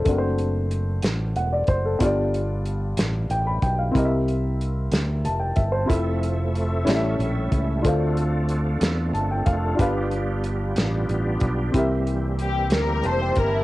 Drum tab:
HH |xxxxxx|xxxxxx|xxxxxx|xxxxxx|
SD |---o--|---o--|---o--|---o--|
BD |o----o|o----o|o----o|o----o|

HH |xxxxxx|xxxxxx|xxxxxx|
SD |---o--|---o--|---o--|
BD |o----o|o----o|o----o|